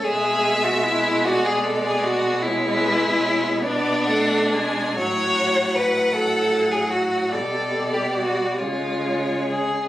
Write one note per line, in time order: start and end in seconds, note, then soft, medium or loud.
0.03 4.93 B2 medium
0.03 2.39 G#3 medium
0.03 0.65 G#4 loud
0.03 1.27 E5 loud
0.63 0.85 F#4 medium
0.84 1.26 E4 loud
1.25 1.47 F#4 loud
1.25 2.42 D5 medium
1.46 1.65 G#4 loud
1.64 1.83 A4 loud
1.84 2.05 G#4 loud
2.03 2.44 F#4 loud
2.42 3.60 G#3 medium
2.42 3.64 E4 loud
2.42 2.83 C#5 medium
2.81 3.20 B4 medium
3.20 3.63 C#5 medium
3.62 4.08 B3 medium
3.62 4.96 D4 loud
3.62 4.07 D5 loud
4.06 4.54 A3 medium
4.06 4.55 F#5 medium
4.53 4.96 G#3 medium
4.53 4.97 G#5 medium
4.97 7.34 A2 medium
4.97 6.11 F#3 medium
4.97 5.77 C#5 loud
4.97 7.29 F#5 loud
5.75 6.14 B4 loud
6.13 7.34 F#3 medium
6.13 6.73 A4 loud
6.71 6.92 G#4 medium
6.90 7.33 F#4 medium
7.31 8.61 B2 medium
7.31 8.61 G3 medium
7.31 7.95 A4 medium
7.31 8.59 D5 medium
7.94 8.16 G4 medium
8.14 8.59 F#4 medium
8.57 9.88 C#3 medium
8.57 9.88 G#3 medium
8.57 9.46 F4 medium
8.57 9.88 C#5 medium
9.47 9.88 G#4 medium